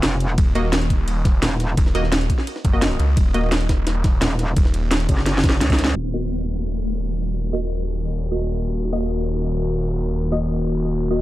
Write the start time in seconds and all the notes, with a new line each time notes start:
0.03 F1, snare, closed hi-hat, ride
0.20 closed hi-hat, ride
0.38 D#1, kick, closed hi-hat, ride
0.55 A#3 F#4 D#5, closed hi-hat, ride
0.73 snare, closed hi-hat, ride
0.82 closed hi-hat
0.90 kick, closed hi-hat, ride
1.08 closed hi-hat, ride
1.25 D#1, kick, snare, closed hi-hat, ride
1.43 D#1, snare, closed hi-hat, ride
1.60 snare, closed hi-hat, ride
1.77 D#1, kick, closed hi-hat, ride
1.86 snare
1.95 D#1 A#3 F#4 D#5, closed hi-hat, ride
2.04 snare
2.12 snare, closed hi-hat, ride
2.21 closed hi-hat
2.30 kick, closed hi-hat, ride
2.38 snare
2.47 closed hi-hat, ride
2.56 snare
2.65 F#1, kick, closed hi-hat, ride
2.73 A#3 F#4 D#5
2.82 snare, closed hi-hat, ride
3.00 C#2, closed hi-hat, ride
3.17 D#1, kick, closed hi-hat, ride
3.34 A#3 F#4 D#5, closed hi-hat, ride
3.52 snare, closed hi-hat, ride
3.61 closed hi-hat
3.69 kick, snare, closed hi-hat, ride
3.87 snare, closed hi-hat, ride
4.04 D#1, kick, snare, closed hi-hat, ride
4.22 D#1, snare, closed hi-hat, ride
4.39 snare, closed hi-hat, ride
4.57 D#1, kick, closed hi-hat, ride
4.65 snare
4.74 D#1, closed hi-hat, ride
4.91 snare, closed hi-hat, ride
5.00 closed hi-hat
5.09 F#1, kick, closed hi-hat, ride
5.18 snare
5.26 snare, closed hi-hat, ride
5.38 snare
5.44 kick, snare, closed hi-hat, ride
5.50 snare
5.61 C#2, snare, closed hi-hat
5.70 kick, snare, closed hi-hat, ride
5.79 snare, closed hi-hat, ride
5.84 snare
5.87 snare, ride
5.96 D#1 D#3 A#3 F#4 A#4, crash, downlifter
6.13 A#3 F#4 D#5
7.53 A#3 F#4 D#5
8.31 A#3 F#4 D#5
8.93 A#3 F#4 D#5
10.32 A#3 F#4 D#5
11.11 A#3 F#4 D#5